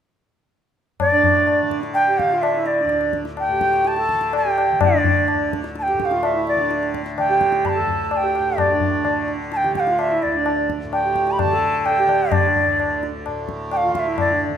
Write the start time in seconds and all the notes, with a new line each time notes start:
1.00 A2 D5, tabla na, tabla ge
1.12 D4
1.24 tabla ge
1.47 tabla na
1.62 D3
1.71 tabla ke
1.83 tabla te
1.94 G5, tabla na
2.09 G4
2.18 F5, tabla ke
2.23 D3
2.31 F4
2.42 E5, tabla na
2.55 E4
2.66 D5, tabla te
2.79 D4
2.85 D2
2.89 tabla te
3.01 tabla te
3.13 tabla ke
3.25 tabla te
3.37 G5, tabla na
3.48 A2 G4
3.61 tabla ke
3.73 tabla te
3.85 A5, tabla te
3.96 A4, tabla te
4.09 D3, tabla ke
4.21 tabla te
4.33 G5, tabla na
4.45 G4
4.58 tabla na
4.72 D3
4.81 D5, tabla na, tabla ge
4.85 E4
4.93 D4
5.04 tabla ge
5.28 tabla na
5.34 D2
5.53 tabla ke
5.64 tabla te
5.75 A5, tabla te
5.83 G5
5.88 G4, tabla te
5.93 A2
6.00 G5, tabla ke
6.05 F5
6.11 F4, tabla te
6.23 E5, tabla na
6.34 E4
6.47 D5, tabla te
6.55 D3 D4
6.71 tabla te
6.83 tabla te
6.94 tabla ke
7.06 tabla te
7.18 D3 G5, tabla na
7.30 G4
7.41 tabla ke
7.52 tabla te
7.65 B5, tabla na, tabla ge
7.69 A5
7.75 A4
7.79 D2
7.87 tabla ge
8.05 A5
8.11 A5, tabla na
8.17 G5
8.23 G4
8.35 tabla na
8.40 A2
8.58 D5, tabla na, tabla ge
8.70 D4
8.80 tabla ge
9.03 D3, tabla na
9.28 tabla te
9.52 A5, tabla te
9.57 G5
9.64 D3 G4, tabla te
9.75 G5, tabla ke
9.80 F5
9.87 F4, tabla te
9.99 E5, tabla na
10.11 E4
10.22 D2 D5, tabla te
10.35 D4
10.46 tabla na
10.70 tabla ke
10.84 A2
10.93 G5, tabla na
11.05 G4
11.16 tabla ke
11.27 tabla te
11.31 B5
11.39 A5, tabla na, tabla ge
11.45 D3
11.52 A4
11.62 tabla ge
11.85 G5, tabla na
11.91 A4
11.99 G4
12.06 D3, tabla na
12.32 D5, tabla na, tabla ge
12.44 D4
12.55 tabla ge
12.67 D2
12.80 tabla na
13.03 tabla te
13.26 A2, tabla na
13.49 tabla ke
13.71 G5, tabla na
13.77 F5
13.83 F4
13.88 D3
13.95 F5, tabla ke
13.99 E5
14.06 E4
14.18 D5, tabla na, tabla ge
14.30 D4
14.49 D3